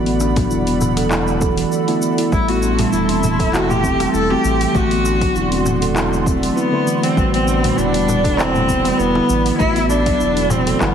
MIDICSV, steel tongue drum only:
0, 0, Header, 1, 2, 480
1, 0, Start_track
1, 0, Tempo, 606061
1, 1841, Time_signature, 4, 2, 24, 8
1, 8668, End_track
2, 0, Start_track
2, 0, Title_t, "Steel tongue drum"
2, 0, Program_c, 0, 114
2, 51, Note_on_c, 0, 59, 101
2, 156, Note_off_c, 0, 59, 0
2, 161, Note_on_c, 0, 62, 77
2, 235, Note_off_c, 0, 62, 0
2, 289, Note_on_c, 0, 54, 81
2, 353, Note_off_c, 0, 54, 0
2, 402, Note_on_c, 0, 64, 86
2, 475, Note_off_c, 0, 64, 0
2, 530, Note_on_c, 0, 59, 74
2, 630, Note_off_c, 0, 59, 0
2, 641, Note_on_c, 0, 52, 73
2, 757, Note_off_c, 0, 52, 0
2, 770, Note_on_c, 0, 69, 74
2, 876, Note_off_c, 0, 69, 0
2, 877, Note_on_c, 0, 64, 101
2, 1001, Note_off_c, 0, 64, 0
2, 1010, Note_on_c, 0, 57, 74
2, 1074, Note_off_c, 0, 57, 0
2, 1117, Note_on_c, 0, 69, 98
2, 1241, Note_off_c, 0, 69, 0
2, 1245, Note_on_c, 0, 52, 98
2, 1348, Note_off_c, 0, 52, 0
2, 1356, Note_on_c, 0, 69, 76
2, 1474, Note_off_c, 0, 69, 0
2, 1487, Note_on_c, 0, 64, 98
2, 1594, Note_off_c, 0, 64, 0
2, 1598, Note_on_c, 0, 57, 76
2, 1715, Note_off_c, 0, 57, 0
2, 1727, Note_on_c, 0, 64, 98
2, 1834, Note_off_c, 0, 64, 0
2, 1840, Note_on_c, 0, 57, 92
2, 1963, Note_off_c, 0, 57, 0
2, 1970, Note_on_c, 0, 59, 100
2, 2076, Note_off_c, 0, 59, 0
2, 2081, Note_on_c, 0, 62, 72
2, 2154, Note_off_c, 0, 62, 0
2, 2211, Note_on_c, 0, 55, 84
2, 2274, Note_off_c, 0, 55, 0
2, 2317, Note_on_c, 0, 64, 80
2, 2392, Note_off_c, 0, 64, 0
2, 2446, Note_on_c, 0, 60, 70
2, 2548, Note_off_c, 0, 60, 0
2, 2558, Note_on_c, 0, 52, 76
2, 2675, Note_off_c, 0, 52, 0
2, 2688, Note_on_c, 0, 69, 76
2, 2794, Note_off_c, 0, 69, 0
2, 2798, Note_on_c, 0, 64, 102
2, 2922, Note_off_c, 0, 64, 0
2, 2926, Note_on_c, 0, 57, 70
2, 2991, Note_off_c, 0, 57, 0
2, 3037, Note_on_c, 0, 60, 99
2, 3155, Note_off_c, 0, 60, 0
2, 3168, Note_on_c, 0, 55, 70
2, 3233, Note_off_c, 0, 55, 0
2, 3281, Note_on_c, 0, 64, 75
2, 3354, Note_off_c, 0, 64, 0
2, 3406, Note_on_c, 0, 60, 77
2, 3513, Note_off_c, 0, 60, 0
2, 3516, Note_on_c, 0, 52, 76
2, 3634, Note_off_c, 0, 52, 0
2, 3650, Note_on_c, 0, 52, 74
2, 3756, Note_off_c, 0, 52, 0
2, 3759, Note_on_c, 0, 57, 98
2, 3883, Note_off_c, 0, 57, 0
2, 3886, Note_on_c, 0, 59, 105
2, 3994, Note_off_c, 0, 59, 0
2, 3999, Note_on_c, 0, 62, 76
2, 4073, Note_off_c, 0, 62, 0
2, 4128, Note_on_c, 0, 54, 81
2, 4193, Note_off_c, 0, 54, 0
2, 4241, Note_on_c, 0, 64, 81
2, 4315, Note_off_c, 0, 64, 0
2, 4367, Note_on_c, 0, 60, 79
2, 4468, Note_off_c, 0, 60, 0
2, 4477, Note_on_c, 0, 52, 71
2, 4595, Note_off_c, 0, 52, 0
2, 4605, Note_on_c, 0, 69, 77
2, 4713, Note_off_c, 0, 69, 0
2, 4717, Note_on_c, 0, 64, 104
2, 4841, Note_off_c, 0, 64, 0
2, 4849, Note_on_c, 0, 57, 73
2, 4913, Note_off_c, 0, 57, 0
2, 4960, Note_on_c, 0, 60, 100
2, 5076, Note_off_c, 0, 60, 0
2, 5088, Note_on_c, 0, 54, 75
2, 5152, Note_off_c, 0, 54, 0
2, 5198, Note_on_c, 0, 64, 80
2, 5273, Note_off_c, 0, 64, 0
2, 5328, Note_on_c, 0, 60, 80
2, 5435, Note_off_c, 0, 60, 0
2, 5436, Note_on_c, 0, 52, 78
2, 5554, Note_off_c, 0, 52, 0
2, 5570, Note_on_c, 0, 52, 78
2, 5676, Note_off_c, 0, 52, 0
2, 5678, Note_on_c, 0, 57, 100
2, 5802, Note_off_c, 0, 57, 0
2, 5808, Note_on_c, 0, 59, 101
2, 5915, Note_off_c, 0, 59, 0
2, 5918, Note_on_c, 0, 62, 76
2, 5993, Note_off_c, 0, 62, 0
2, 6048, Note_on_c, 0, 55, 81
2, 6112, Note_off_c, 0, 55, 0
2, 6158, Note_on_c, 0, 64, 84
2, 6233, Note_off_c, 0, 64, 0
2, 6286, Note_on_c, 0, 59, 76
2, 6388, Note_off_c, 0, 59, 0
2, 6398, Note_on_c, 0, 52, 78
2, 6515, Note_off_c, 0, 52, 0
2, 6523, Note_on_c, 0, 69, 70
2, 6632, Note_off_c, 0, 69, 0
2, 6635, Note_on_c, 0, 64, 104
2, 6761, Note_off_c, 0, 64, 0
2, 6767, Note_on_c, 0, 57, 74
2, 6832, Note_off_c, 0, 57, 0
2, 6877, Note_on_c, 0, 59, 103
2, 6995, Note_off_c, 0, 59, 0
2, 7007, Note_on_c, 0, 55, 75
2, 7072, Note_off_c, 0, 55, 0
2, 7121, Note_on_c, 0, 64, 79
2, 7194, Note_off_c, 0, 64, 0
2, 7248, Note_on_c, 0, 59, 84
2, 7355, Note_off_c, 0, 59, 0
2, 7359, Note_on_c, 0, 52, 79
2, 7476, Note_off_c, 0, 52, 0
2, 7488, Note_on_c, 0, 52, 74
2, 7595, Note_off_c, 0, 52, 0
2, 7602, Note_on_c, 0, 57, 93
2, 7724, Note_off_c, 0, 57, 0
2, 7729, Note_on_c, 0, 59, 102
2, 7835, Note_off_c, 0, 59, 0
2, 7840, Note_on_c, 0, 62, 74
2, 7914, Note_off_c, 0, 62, 0
2, 7970, Note_on_c, 0, 54, 85
2, 8033, Note_off_c, 0, 54, 0
2, 8080, Note_on_c, 0, 64, 80
2, 8154, Note_off_c, 0, 64, 0
2, 8211, Note_on_c, 0, 59, 72
2, 8311, Note_off_c, 0, 59, 0
2, 8321, Note_on_c, 0, 52, 80
2, 8437, Note_off_c, 0, 52, 0
2, 8449, Note_on_c, 0, 69, 79
2, 8555, Note_off_c, 0, 69, 0
2, 8560, Note_on_c, 0, 64, 104
2, 8668, Note_off_c, 0, 64, 0
2, 8668, End_track
0, 0, End_of_file